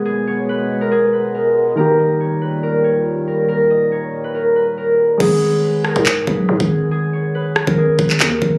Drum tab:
CC |----------------|----------------|----------------|x---------------|
CP |----------------|----------------|----------------|--------x-------|
SD |----------------|----------------|----------------|------r---------|
BD |----------------|----------------|----------------|o------o--o--o--|

CC |----------------|
CP |-----------xx---|
SD |------r---------|
BD |-------o--o---o-|